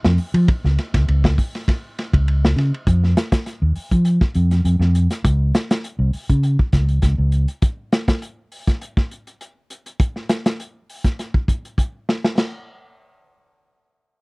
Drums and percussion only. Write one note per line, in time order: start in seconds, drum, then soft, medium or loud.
0.04 snare medium
0.18 open hi-hat medium
0.34 ride bell medium
0.48 kick medium
0.48 ride bell medium
0.65 snare soft
0.78 snare soft
0.78 ride bell medium
0.94 kick medium
0.94 snare soft
0.94 ride bell medium
1.08 ride bell medium
1.24 kick medium
1.24 snare medium
1.38 kick medium
1.38 open hi-hat medium
1.55 snare soft
1.55 ride bell medium
1.68 kick medium
1.68 snare soft
1.68 ride bell medium
1.99 snare soft
1.99 ride bell medium
2.13 kick medium
2.13 ride bell soft
2.28 ride bell soft
2.45 snare medium
2.58 snare soft
2.58 ride bell medium
2.74 ride bell soft
2.87 kick medium
2.87 closed hi-hat medium
3.04 snare soft
3.17 snare medium
3.17 closed hi-hat medium
3.32 kick medium
3.32 snare medium
3.32 closed hi-hat medium
3.46 snare soft
3.46 closed hi-hat medium
3.75 open hi-hat medium
3.91 kick medium
3.91 closed hi-hat soft
4.05 closed hi-hat medium
4.21 kick medium
4.21 snare soft
4.35 closed hi-hat medium
4.51 snare soft
4.51 closed hi-hat medium
4.65 closed hi-hat medium
4.81 snare soft
4.95 closed hi-hat medium
5.10 snare soft
5.10 closed hi-hat medium
5.25 kick medium
5.25 closed hi-hat medium
5.54 snare medium
5.54 closed hi-hat medium
5.71 snare medium
5.71 closed hi-hat medium
5.84 closed hi-hat medium
6.13 open hi-hat medium
6.29 kick medium
6.29 closed hi-hat soft
6.43 closed hi-hat medium
6.59 kick medium
6.73 kick medium
6.73 snare soft
6.73 closed hi-hat soft
6.88 closed hi-hat soft
7.02 kick medium
7.02 snare soft
7.02 closed hi-hat medium
7.32 closed hi-hat soft
7.48 closed hi-hat soft
7.62 kick medium
7.62 closed hi-hat medium
7.92 snare medium
7.92 closed hi-hat soft
8.08 kick medium
8.08 snare medium
8.08 closed hi-hat medium
8.22 closed hi-hat medium
8.52 open hi-hat medium
8.67 kick medium
8.67 snare soft
8.67 closed hi-hat soft
8.81 closed hi-hat medium
8.97 kick medium
8.97 snare soft
9.11 closed hi-hat medium
9.27 closed hi-hat soft
9.41 closed hi-hat medium
9.70 closed hi-hat medium
9.86 closed hi-hat soft
10.00 kick medium
10.00 closed hi-hat medium
10.16 snare soft
10.29 snare medium
10.29 closed hi-hat medium
10.46 snare medium
10.46 closed hi-hat medium
10.60 closed hi-hat medium
10.90 open hi-hat medium
11.04 kick medium
11.04 snare soft
11.04 closed hi-hat soft
11.19 snare soft
11.19 closed hi-hat medium
11.34 kick medium
11.48 kick medium
11.48 closed hi-hat medium
11.65 closed hi-hat soft
11.78 kick medium
11.78 closed hi-hat medium
12.09 snare medium
12.24 snare medium
12.38 snare medium
12.38 splash medium